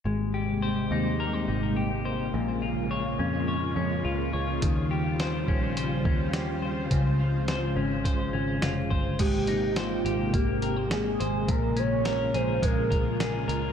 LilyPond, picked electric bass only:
\new Staff \with { instrumentName = "Picked electric bass" } { \clef bass \time 4/4 \key aes \major \tempo 4 = 105 aes,,4. ees,4 aes,,4. | bes,,4. f,4 f,8 des,8 des,8 | ees,4. bes,,4 ees,4. | des,4. aes,,4 aes,,8 f,,8 g,,8 |
aes,,4. aes,,8 aes,,4. aes,,8 | bes,,4. bes,,8 bes,,4. des,8 | }